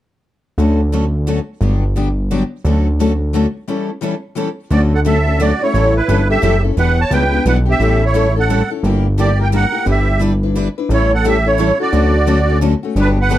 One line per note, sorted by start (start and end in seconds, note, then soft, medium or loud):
0.58 1.40 D2 medium
0.58 0.79 D3 soft
0.58 0.79 F#3 medium
0.58 0.79 A3 medium
0.58 0.80 C#4 medium
0.58 0.79 F#4 medium
0.58 0.80 A4 medium
0.92 1.04 D3 medium
0.92 1.04 F#3 medium
0.92 1.04 A3 medium
0.92 1.04 C#4 medium
0.92 1.04 F#4 medium
0.92 1.04 A4 medium
1.28 1.39 D3 medium
1.28 1.39 F#3 medium
1.28 1.39 A3 medium
1.28 1.39 C#4 medium
1.28 1.39 F#4 medium
1.28 1.39 A4 medium
1.61 2.44 G1 medium
1.61 1.82 D3 medium
1.61 1.82 F#3 soft
1.61 1.83 B3 medium
1.61 1.83 D4 medium
1.61 1.83 G4 medium
1.96 2.07 D3 medium
1.96 2.07 F#3 medium
1.96 2.07 B3 medium
1.96 2.08 D4 medium
1.96 2.08 G4 medium
2.31 2.42 D3 medium
2.31 2.42 F#3 medium
2.31 2.42 B3 medium
2.31 2.42 D4 medium
2.31 2.43 G4 medium
2.64 3.47 D2 medium
2.64 2.86 D3 medium
2.64 2.87 F#3 medium
2.64 2.87 A3 medium
2.64 2.87 C#4 medium
2.64 2.87 F#4 medium
2.64 2.87 A4 medium
2.99 3.10 D3 medium
2.99 3.11 F#3 medium
2.99 3.11 A3 medium
2.99 3.11 C#4 medium
2.99 3.11 F#4 medium
2.99 3.12 A4 medium
3.33 3.45 D3 medium
3.33 3.45 F#3 medium
3.33 3.45 A3 medium
3.33 3.45 C#4 medium
3.33 3.45 F#4 medium
3.33 3.46 A4 medium
3.68 3.89 E3 medium
3.68 3.89 G3 medium
3.68 3.89 C#4 medium
3.68 3.89 E4 medium
3.68 3.90 A4 medium
4.01 4.13 E3 medium
4.01 4.13 G3 medium
4.01 4.13 C#4 medium
4.01 4.13 E4 medium
4.01 4.14 A4 medium
4.35 4.47 E3 medium
4.35 4.47 G3 medium
4.35 4.48 C#4 medium
4.35 4.48 E4 medium
4.35 4.48 A4 medium
4.70 5.53 D2 medium
4.70 4.92 D3 medium
4.70 4.92 F#3 medium
4.70 4.92 A3 medium
4.70 4.93 C#4 medium
4.70 4.81 F#4 medium
4.70 4.93 F#4 medium
4.70 4.93 A4 medium
4.70 4.82 D5 medium
4.94 4.99 A4 medium
4.94 5.00 F#5 medium
5.05 5.16 D3 medium
5.05 5.17 F#3 medium
5.05 5.17 A3 medium
5.05 5.17 C#4 medium
5.05 5.17 F#4 medium
5.05 5.17 A4 medium
5.05 5.39 A4 medium
5.05 5.42 E5 medium
5.26 5.39 A3 soft
5.26 5.39 C#4 soft
5.26 5.39 F#4 medium
5.40 5.51 D3 medium
5.40 5.51 F#3 medium
5.40 5.51 A3 medium
5.40 5.51 C#4 medium
5.40 5.51 F#4 medium
5.40 5.61 F#4 medium
5.40 5.52 A4 medium
5.40 5.63 D5 medium
5.61 5.74 A3 medium
5.61 5.73 C#4 soft
5.61 5.94 E4 medium
5.61 5.74 F#4 medium
5.61 5.94 C#5 medium
5.74 6.01 A1 medium
5.74 5.95 E3 medium
5.74 5.95 G3 medium
5.74 5.96 C#4 medium
5.74 5.96 E4 medium
5.74 5.96 A4 medium
5.96 6.28 E4 medium
5.96 6.28 B4 medium
6.08 6.38 G1 medium
6.08 6.20 E3 medium
6.08 6.20 G3 medium
6.08 6.20 C#4 medium
6.08 6.20 E4 medium
6.08 6.20 A4 medium
6.30 6.43 C#4 soft
6.30 6.43 E4 soft
6.30 6.62 G4 medium
6.30 6.43 A4 medium
6.30 6.62 E5 medium
6.43 6.72 F#1 medium
6.43 6.54 E3 medium
6.43 6.55 G3 medium
6.43 6.55 C#4 medium
6.43 6.55 E4 medium
6.43 6.55 A4 medium
6.63 6.77 C#4 soft
6.63 6.77 E4 medium
6.63 6.76 A4 medium
6.77 7.04 E1 medium
6.77 6.98 E3 medium
6.77 6.98 G3 medium
6.77 6.99 B3 medium
6.77 6.99 D4 medium
6.77 6.99 E4 medium
6.77 6.99 G4 medium
6.77 6.97 B4 medium
6.77 6.99 B4 medium
6.77 7.00 F#5 loud
7.00 7.11 C#5 medium
7.00 7.12 A5 loud
7.11 7.40 C#2 medium
7.11 7.23 E3 medium
7.11 7.23 G3 medium
7.11 7.23 B3 medium
7.11 7.23 D4 medium
7.11 7.23 E4 medium
7.11 7.23 G4 medium
7.11 7.23 B4 medium
7.11 7.44 B4 medium
7.11 7.44 G5 loud
7.32 7.45 B3 soft
7.32 7.45 D4 medium
7.32 7.45 G4 medium
7.45 7.75 B1 medium
7.45 7.57 E3 medium
7.45 7.57 G3 medium
7.45 7.57 B3 medium
7.45 7.57 D4 medium
7.45 7.58 E4 medium
7.45 7.58 G4 medium
7.45 7.56 B4 medium
7.45 7.58 B4 medium
7.45 7.57 F#5 medium
7.66 7.80 B3 soft
7.66 7.79 D4 soft
7.66 7.79 G4 medium
7.66 8.00 G4 medium
7.71 8.04 E5 medium
7.80 8.62 A1 medium
7.80 8.01 E3 medium
7.80 8.02 G3 medium
7.80 8.01 C#4 medium
7.80 8.01 E4 medium
7.80 8.02 A4 medium
8.03 8.34 E4 medium
8.03 8.36 C#5 medium
8.14 8.25 E3 medium
8.14 8.26 G3 medium
8.14 8.26 C#4 medium
8.14 8.26 E4 medium
8.14 8.26 A4 medium
8.36 8.49 C#4 soft
8.36 8.49 E4 medium
8.36 8.48 A4 medium
8.36 8.69 A4 medium
8.36 8.70 F#5 medium
8.49 8.60 E3 medium
8.49 8.61 G3 medium
8.49 8.61 C#4 medium
8.49 8.61 E4 medium
8.49 8.61 A4 medium
8.70 8.84 C#4 soft
8.70 8.83 E4 soft
8.70 8.83 A4 medium
8.83 9.66 G1 medium
8.83 9.05 D3 medium
8.83 9.05 G3 medium
8.83 9.05 A#3 medium
8.83 9.05 E4 medium
8.83 9.05 G4 medium
9.18 9.29 D3 medium
9.18 9.29 G3 medium
9.18 9.29 A#3 medium
9.18 9.30 E4 medium
9.18 9.38 G4 medium
9.18 9.30 G4 medium
9.18 9.38 D5 medium
9.39 9.52 A#3 soft
9.39 9.51 E4 medium
9.39 9.52 G4 medium
9.39 9.46 A#4 medium
9.43 9.48 G5 medium
9.52 9.63 D3 medium
9.52 9.63 G3 medium
9.52 9.64 A#3 medium
9.52 9.64 E4 medium
9.52 9.64 G4 medium
9.52 9.85 A#4 medium
9.56 9.86 F#5 loud
9.72 9.85 A#3 soft
9.72 9.85 E4 soft
9.72 9.85 G4 medium
9.85 10.69 G1 medium
9.85 10.07 G3 medium
9.85 10.07 D4 medium
9.85 10.07 E4 medium
9.85 10.19 G4 medium
9.85 10.08 B4 medium
9.91 10.21 E5 medium
10.19 10.31 G3 medium
10.19 10.32 D4 medium
10.19 10.32 E4 medium
10.19 10.32 B4 medium
10.43 10.56 D4 soft
10.43 10.56 E4 soft
10.43 10.55 B4 medium
10.56 10.67 G3 medium
10.56 10.67 D4 medium
10.56 10.67 E4 medium
10.56 10.68 B4 medium
10.78 10.90 D4 soft
10.78 10.90 E4 soft
10.78 10.90 B4 medium
10.89 11.72 A1 medium
10.89 11.11 E3 medium
10.89 11.11 G3 medium
10.89 11.12 C#4 medium
10.89 11.12 E4 medium
10.89 11.11 E4 medium
10.89 11.12 A4 medium
10.94 11.12 C#5 medium
11.14 11.25 A4 medium
11.14 11.26 F#5 loud
11.24 11.36 E3 medium
11.24 11.36 G3 medium
11.24 11.36 C#4 medium
11.24 11.36 E4 loud
11.24 11.45 G4 medium
11.24 11.36 A4 medium
11.24 11.48 E5 loud
11.46 11.58 C#4 soft
11.46 11.58 E4 soft
11.46 11.78 E4 medium
11.46 11.58 A4 medium
11.46 11.78 C#5 medium
11.59 11.70 E3 medium
11.59 11.70 G3 medium
11.59 11.70 C#4 medium
11.59 11.71 E4 medium
11.59 11.71 A4 loud
11.79 11.92 C#4 soft
11.79 11.93 E4 medium
11.79 12.58 F#4 medium
11.79 11.92 A4 medium
11.79 12.59 D5 medium
11.92 12.75 D2 medium
11.92 12.14 D3 medium
11.92 12.14 F#3 medium
11.92 12.14 A3 medium
11.92 12.14 C#4 medium
11.92 12.15 F#4 medium
11.92 12.15 A4 medium
12.26 12.38 D3 medium
12.26 12.38 F#3 medium
12.26 12.39 A3 medium
12.26 12.39 C#4 medium
12.26 12.39 F#4 medium
12.26 12.39 A4 medium
12.49 12.61 A3 soft
12.49 12.61 C#4 medium
12.49 12.61 F#4 medium
12.62 12.73 D3 medium
12.62 12.73 F#3 medium
12.62 12.73 A3 medium
12.62 12.73 C#4 medium
12.62 12.73 F#4 medium
12.62 12.73 A4 medium
12.83 12.96 A3 soft
12.83 12.96 C#4 soft
12.83 12.96 F#4 medium
12.96 13.38 G1 medium
12.96 13.17 D3 medium
12.96 13.18 F#3 medium
12.96 13.17 B3 medium
12.96 13.18 D4 medium
12.96 13.08 D4 medium
12.96 13.18 G4 medium
13.00 13.09 B4 medium
13.20 13.38 B4 medium
13.20 13.38 F#5 loud
13.29 13.38 D3 medium
13.29 13.38 F#3 medium
13.29 13.38 B3 medium
13.29 13.38 D4 medium
13.29 13.38 G4 medium